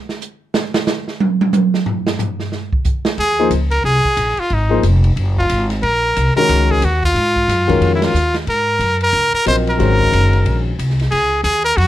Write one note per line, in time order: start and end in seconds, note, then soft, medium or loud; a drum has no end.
0.09 snare soft
0.22 hi-hat pedal medium
0.54 snare loud
0.74 snare medium
0.87 snare loud
0.87 hi-hat pedal medium
1.08 snare soft
1.20 high tom loud
1.41 high tom loud
1.53 hi-hat pedal medium
1.53 high tom loud
1.74 snare medium
1.86 floor tom loud
2.07 snare medium
2.19 floor tom loud
2.19 hi-hat pedal medium
2.40 snare soft
2.52 snare soft
2.73 kick medium
2.85 kick loud
2.85 hi-hat pedal medium
3.05 snare loud
3.18 3.50 D#2 medium
3.18 3.50 G#4 medium
3.18 ride medium
3.39 3.50 F3 medium
3.39 3.50 A#3 medium
3.39 3.51 D#4 medium
3.39 3.51 G#4 medium
3.39 3.51 C5 medium
3.51 3.83 C#2 medium
3.51 hi-hat pedal soft
3.51 ride medium
3.71 3.83 A#4 medium
3.71 ride medium
3.84 4.03 C2 medium
3.84 4.41 G#4 medium
4.04 muted upright bass stroke soft
4.04 kick soft
4.17 4.36 A#1 medium
4.17 hi-hat pedal medium
4.17 ride medium
4.37 4.55 F4 medium
4.37 muted upright bass stroke soft
4.37 ride soft
4.50 4.83 G#1 medium
4.50 4.85 D#4 medium
4.50 ride soft
4.69 4.82 F3 medium
4.69 4.82 A#3 medium
4.69 4.82 D#4 medium
4.69 4.82 G#4 medium
4.69 4.82 C5 medium
4.83 5.16 F1 medium
4.83 hi-hat pedal medium
4.83 ride medium
5.04 ride soft
5.16 5.48 F#1 medium
5.16 ride medium
5.37 5.69 F4 medium
5.37 kick medium
5.49 5.82 G#1 medium
5.49 hi-hat pedal medium
5.49 ride medium
5.70 snare soft
5.70 ride soft
5.83 6.15 A#1 medium
5.83 6.32 A#4 medium
5.83 ride medium
6.16 6.35 C2 medium
6.16 hi-hat pedal medium
6.16 ride medium
6.36 6.80 D#3 medium
6.36 6.79 G#3 medium
6.36 6.80 C#4 medium
6.36 6.80 F#4 medium
6.36 6.72 A#4 medium
6.36 6.80 A#4 medium
6.36 ride soft
6.49 6.81 C#2 medium
6.49 snare soft
6.49 ride medium
6.70 6.86 G#4 medium
6.70 kick medium
6.82 7.14 D#2 medium
6.82 7.04 F#4 medium
6.82 hi-hat pedal medium
6.82 ride medium
7.03 7.90 F4 medium
7.03 kick medium
7.14 7.47 G#2 medium
7.14 ride medium
7.36 kick medium
7.48 7.80 F#2 medium
7.48 snare soft
7.48 hi-hat pedal medium
7.48 ride medium
7.67 8.11 D#3 medium
7.67 8.11 G#3 medium
7.67 8.12 C#4 medium
7.67 8.11 F#4 medium
7.67 8.12 A#4 medium
7.67 kick medium
7.67 ride soft
7.81 8.13 F2 medium
7.81 ride medium
7.95 8.05 E4 medium
8.02 8.36 F4 medium
8.02 snare medium
8.02 ride medium
8.14 8.46 D#2 medium
8.14 hi-hat pedal medium
8.34 snare medium
8.34 ride soft
8.47 8.79 G#2 medium
8.47 8.98 A#4 medium
8.47 ride medium
8.79 9.12 F#2 medium
8.79 hi-hat pedal soft
8.79 ride medium
9.01 9.32 A#4 loud
9.01 ride soft
9.13 9.32 C#2 medium
9.13 ride medium
9.33 9.46 A#4 medium
9.33 muted upright bass stroke soft
9.46 9.78 A#1 medium
9.46 9.95 F#3 medium
9.46 9.96 C4 medium
9.46 9.96 F4 medium
9.46 9.96 A#4 medium
9.46 9.56 C5 medium
9.46 9.96 D#5 medium
9.46 hi-hat pedal medium
9.46 ride medium
9.67 10.63 A#4 medium
9.67 ride soft
9.77 10.11 G#1 medium
9.77 10.70 D#3 medium
9.77 10.70 G#3 medium
9.77 10.71 C#4 medium
9.77 10.71 F#4 medium
9.77 10.71 C5 medium
9.77 snare soft
9.77 ride medium
10.00 kick soft
10.12 10.44 F#1 medium
10.12 hi-hat pedal medium
10.12 ride medium
10.33 ride soft
10.45 10.77 A#1 medium
10.45 ride medium
10.79 11.11 C2 medium
10.79 hi-hat pedal medium
10.79 ride medium
10.90 snare soft
11.00 snare soft
11.00 ride soft
11.11 11.43 C#2 medium
11.11 11.42 G#4 medium
11.11 ride medium
11.44 11.76 D#2 medium
11.44 11.63 G#4 medium
11.44 hi-hat pedal soft
11.44 ride medium
11.65 11.78 A#4 medium
11.65 ride soft
11.77 11.87 F2 medium
11.77 11.87 F#4 medium
11.77 ride medium